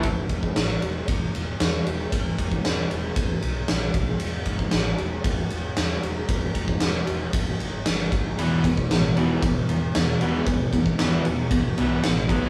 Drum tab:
RD |x-x-x-x-x-x-x-x-|x-x-x-x-x-x-x-x-|x-x-x-x-x-x-x-x-|x-x-x-x-x-x-x-x-|
SD |----o-------o---|----o-------o---|----o-------o---|----o-------o---|
BD |o-oo----o-------|o-oo----o-----o-|--oo----o-------|o-oo----o-----o-|

RD |x-x-x-x-x-x-x-x-|x-x-x-x-x-x-x-x-|
SD |----o-------o---|----o-------o---|
BD |--oo----o-------|o-oo----o-----o-|